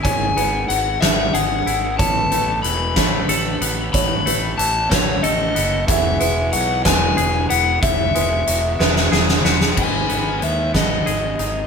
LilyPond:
<<
  \new Staff \with { instrumentName = "Electric slide guitar" } { \time 6/8 \key e \major \tempo 4. = 62 gis''4 fis''8 e''8 fis''4 | a''4 b''2 | b''4 a''8 cis''8 dis''4 | e''4 fis''8 gis''4 fis''8 |
e''2 r4 | gis''4 e''8 dis''4. | }
  \new Staff \with { instrumentName = "Felt piano" } { \time 6/8 \key e \major cis''8 b'4 b'4 r8 | cis''8 b'4 b'4 r8 | cis''8 b'4 b'4 r8 | e''8 b'4 b'4 r8 |
e''8 b'4 b'4 r8 | r2. | }
  \new Staff \with { instrumentName = "Pedal steel guitar" } { \time 6/8 \key e \major <gis e' gis' b'>2. | <a b>2.~ | <a b>2. | <e fis' gis'>2.~ |
<e fis' gis'>2. | <gis gis' b'>2. | }
  \new Staff \with { instrumentName = "Clean electric guitar" } { \time 6/8 \key e \major <gis, fis b e' gis'>8 b8 fis8 b8 gis'8 e'8 | a,8 a8 e8 a8 a'8 b8 | a,8 a8 e8 a8 a'8 b8 | e,8 gis8 fis8 gis8 gis'8 b8 |
e,8 gis8 fis8 gis8 gis'8 b8 | gis,8 b8 gis8 b8 gis'8 dis'8 | }
  \new Staff \with { instrumentName = "Fingered electric bass" } { \clef bass \time 6/8 \key e \major gis,,8 gis,,8 gis,,8 gis,,8 gis,,8 gis,,8 | a,,8 a,,8 e,,8 a,,8 a,,8 a,,8 | a,,8 a,,8 a,,8 a,,8 a,,8 fis,,8 | e,,8 e,,8 b,,8 e,,8 e,,8 e,,8 |
e,,8 e,,8 e,,8 e,,8 e,,8 e,,8 | gis,,8 gis,,8 dis,8 gis,,8 gis,,8 gis,,8 | }
  \new DrumStaff \with { instrumentName = "Drums" } \drummode { \time 6/8 <hh bd>8 hh8 hh8 <hh sn>8 hh8 hh8 | <hh bd>8 hh8 hh8 <hh bd sn>8 hh8 hh8 | <hh bd>8 hh8 hh8 <hh bd sn>8 hh8 hh8 | <hh bd>8 hh8 hh8 <hh bd sn>8 hh8 hh8 |
<hh bd>8 hh8 hh8 sn16 sn16 sn16 sn16 sn16 sn16 | <cymc bd>8 hh8 hh8 <hh bd sn>8 hh8 hh8 | }
>>